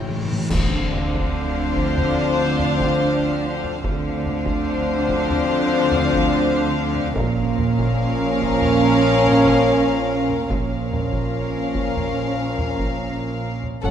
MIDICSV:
0, 0, Header, 1, 12, 480
1, 0, Start_track
1, 0, Tempo, 833333
1, 288, Time_signature, 4, 2, 24, 8
1, 8010, End_track
2, 0, Start_track
2, 0, Title_t, "Violin section"
2, 0, Program_c, 0, 48
2, 0, Note_on_c, 0, 79, 43
2, 148, Note_off_c, 0, 79, 0
2, 295, Note_on_c, 0, 77, 59
2, 2188, Note_off_c, 0, 77, 0
2, 2210, Note_on_c, 0, 77, 64
2, 4106, Note_off_c, 0, 77, 0
2, 4131, Note_on_c, 0, 77, 81
2, 6026, Note_off_c, 0, 77, 0
2, 6052, Note_on_c, 0, 77, 55
2, 7832, Note_off_c, 0, 77, 0
2, 7974, Note_on_c, 0, 78, 43
2, 8010, Note_off_c, 0, 78, 0
2, 8010, End_track
3, 0, Start_track
3, 0, Title_t, "Violin section"
3, 0, Program_c, 1, 48
3, 0, Note_on_c, 1, 73, 49
3, 146, Note_off_c, 1, 73, 0
3, 290, Note_on_c, 1, 72, 74
3, 2186, Note_off_c, 1, 72, 0
3, 2200, Note_on_c, 1, 72, 78
3, 4101, Note_off_c, 1, 72, 0
3, 4128, Note_on_c, 1, 70, 90
3, 6025, Note_off_c, 1, 70, 0
3, 6037, Note_on_c, 1, 70, 59
3, 7824, Note_off_c, 1, 70, 0
3, 7960, Note_on_c, 1, 69, 46
3, 8006, Note_off_c, 1, 69, 0
3, 8010, End_track
4, 0, Start_track
4, 0, Title_t, "Viola section"
4, 0, Program_c, 2, 48
4, 0, Note_on_c, 2, 64, 51
4, 149, Note_off_c, 2, 64, 0
4, 289, Note_on_c, 2, 62, 73
4, 2186, Note_off_c, 2, 62, 0
4, 2212, Note_on_c, 2, 62, 81
4, 4107, Note_off_c, 2, 62, 0
4, 4124, Note_on_c, 2, 61, 97
4, 6023, Note_off_c, 2, 61, 0
4, 6050, Note_on_c, 2, 61, 60
4, 7831, Note_off_c, 2, 61, 0
4, 7970, Note_on_c, 2, 61, 45
4, 8010, Note_off_c, 2, 61, 0
4, 8010, End_track
5, 0, Start_track
5, 0, Title_t, "French horn section"
5, 0, Program_c, 3, 60
5, 286, Note_on_c, 3, 53, 62
5, 286, Note_on_c, 3, 60, 64
5, 2184, Note_off_c, 3, 53, 0
5, 2184, Note_off_c, 3, 60, 0
5, 2213, Note_on_c, 3, 53, 75
5, 2215, Note_on_c, 3, 60, 73
5, 4107, Note_off_c, 3, 53, 0
5, 4108, Note_off_c, 3, 60, 0
5, 4124, Note_on_c, 3, 53, 80
5, 4127, Note_on_c, 3, 61, 83
5, 5950, Note_off_c, 3, 53, 0
5, 5950, Note_off_c, 3, 61, 0
5, 6048, Note_on_c, 3, 53, 54
5, 6049, Note_on_c, 3, 61, 57
5, 7761, Note_off_c, 3, 53, 0
5, 7761, Note_off_c, 3, 61, 0
5, 7974, Note_on_c, 3, 61, 53
5, 7979, Note_on_c, 3, 57, 47
5, 8010, Note_off_c, 3, 57, 0
5, 8010, Note_off_c, 3, 61, 0
5, 8010, End_track
6, 0, Start_track
6, 0, Title_t, "Cello section"
6, 0, Program_c, 4, 48
6, 0, Note_on_c, 4, 45, 52
6, 151, Note_off_c, 4, 45, 0
6, 295, Note_on_c, 4, 50, 68
6, 2188, Note_off_c, 4, 50, 0
6, 2215, Note_on_c, 4, 50, 75
6, 4109, Note_off_c, 4, 50, 0
6, 4131, Note_on_c, 4, 46, 82
6, 6027, Note_off_c, 4, 46, 0
6, 6051, Note_on_c, 4, 46, 55
6, 7831, Note_off_c, 4, 46, 0
6, 7969, Note_on_c, 4, 42, 58
6, 8010, Note_off_c, 4, 42, 0
6, 8010, End_track
7, 0, Start_track
7, 0, Title_t, "Timpani"
7, 0, Program_c, 5, 47
7, 10, Note_on_c, 5, 45, 72
7, 44, Note_off_c, 5, 45, 0
7, 51, Note_on_c, 5, 45, 66
7, 92, Note_off_c, 5, 45, 0
7, 98, Note_on_c, 5, 45, 68
7, 136, Note_off_c, 5, 45, 0
7, 143, Note_on_c, 5, 45, 73
7, 177, Note_off_c, 5, 45, 0
7, 184, Note_on_c, 5, 45, 82
7, 223, Note_off_c, 5, 45, 0
7, 229, Note_on_c, 5, 45, 81
7, 268, Note_off_c, 5, 45, 0
7, 8010, End_track
8, 0, Start_track
8, 0, Title_t, "Double bass section"
8, 0, Program_c, 6, 48
8, 0, Note_on_c, 6, 33, 52
8, 148, Note_off_c, 6, 33, 0
8, 294, Note_on_c, 6, 38, 68
8, 2188, Note_off_c, 6, 38, 0
8, 2216, Note_on_c, 6, 38, 81
8, 4109, Note_off_c, 6, 38, 0
8, 4130, Note_on_c, 6, 34, 87
8, 6026, Note_off_c, 6, 34, 0
8, 6045, Note_on_c, 6, 34, 60
8, 7828, Note_off_c, 6, 34, 0
8, 7970, Note_on_c, 6, 30, 54
8, 8010, Note_off_c, 6, 30, 0
8, 8010, End_track
9, 0, Start_track
9, 0, Title_t, "Impact"
9, 0, Program_c, 7, 103
9, 296, Note_on_c, 7, 60, 61
9, 2212, Note_off_c, 7, 60, 0
9, 8010, End_track
10, 0, Start_track
10, 0, Title_t, "Reverse cymbal"
10, 0, Program_c, 8, 119
10, 0, Note_on_c, 8, 60, 45
10, 288, Note_off_c, 8, 60, 0
10, 8010, End_track
11, 0, Start_track
11, 0, Title_t, "Taiko and cinematic ensemble drums"
11, 290, Note_on_c, 9, 41, 94
11, 348, Note_off_c, 9, 41, 0
11, 535, Note_on_c, 9, 45, 64
11, 592, Note_off_c, 9, 45, 0
11, 654, Note_on_c, 9, 41, 83
11, 712, Note_off_c, 9, 41, 0
11, 1014, Note_on_c, 9, 41, 76
11, 1072, Note_off_c, 9, 41, 0
11, 1138, Note_on_c, 9, 45, 56
11, 1195, Note_off_c, 9, 45, 0
11, 1493, Note_on_c, 9, 45, 58
11, 1550, Note_off_c, 9, 45, 0
11, 1613, Note_on_c, 9, 41, 81
11, 1671, Note_off_c, 9, 41, 0
11, 2093, Note_on_c, 9, 45, 41
11, 2151, Note_off_c, 9, 45, 0
11, 2213, Note_on_c, 9, 41, 93
11, 2270, Note_off_c, 9, 41, 0
11, 2451, Note_on_c, 9, 45, 56
11, 2508, Note_off_c, 9, 45, 0
11, 2569, Note_on_c, 9, 41, 78
11, 2627, Note_off_c, 9, 41, 0
11, 2931, Note_on_c, 9, 41, 79
11, 2988, Note_off_c, 9, 41, 0
11, 3049, Note_on_c, 9, 45, 56
11, 3107, Note_off_c, 9, 45, 0
11, 3411, Note_on_c, 9, 45, 62
11, 3468, Note_off_c, 9, 45, 0
11, 3528, Note_on_c, 9, 41, 80
11, 3586, Note_off_c, 9, 41, 0
11, 4006, Note_on_c, 9, 45, 45
11, 4063, Note_off_c, 9, 45, 0
11, 4123, Note_on_c, 9, 41, 98
11, 4181, Note_off_c, 9, 41, 0
11, 4367, Note_on_c, 9, 45, 60
11, 4425, Note_off_c, 9, 45, 0
11, 4485, Note_on_c, 9, 41, 81
11, 4543, Note_off_c, 9, 41, 0
11, 4845, Note_on_c, 9, 41, 75
11, 4902, Note_off_c, 9, 41, 0
11, 4969, Note_on_c, 9, 45, 53
11, 5026, Note_off_c, 9, 45, 0
11, 5330, Note_on_c, 9, 45, 55
11, 5388, Note_off_c, 9, 45, 0
11, 5449, Note_on_c, 9, 41, 67
11, 5506, Note_off_c, 9, 41, 0
11, 5929, Note_on_c, 9, 45, 39
11, 5987, Note_off_c, 9, 45, 0
11, 6049, Note_on_c, 9, 41, 83
11, 6106, Note_off_c, 9, 41, 0
11, 6290, Note_on_c, 9, 45, 54
11, 6347, Note_off_c, 9, 45, 0
11, 6409, Note_on_c, 9, 41, 68
11, 6466, Note_off_c, 9, 41, 0
11, 6767, Note_on_c, 9, 41, 68
11, 6824, Note_off_c, 9, 41, 0
11, 6890, Note_on_c, 9, 45, 49
11, 6948, Note_off_c, 9, 45, 0
11, 7249, Note_on_c, 9, 45, 50
11, 7306, Note_off_c, 9, 45, 0
11, 7368, Note_on_c, 9, 41, 69
11, 7426, Note_off_c, 9, 41, 0
11, 7852, Note_on_c, 9, 45, 39
11, 7909, Note_off_c, 9, 45, 0
11, 7971, Note_on_c, 9, 41, 81
11, 8010, Note_off_c, 9, 41, 0
11, 8010, End_track
12, 0, Start_track
12, 0, Title_t, "Drums"
12, 291, Note_on_c, 9, 35, 65
12, 291, Note_on_c, 9, 49, 64
12, 349, Note_off_c, 9, 35, 0
12, 349, Note_off_c, 9, 49, 0
12, 8010, End_track
0, 0, End_of_file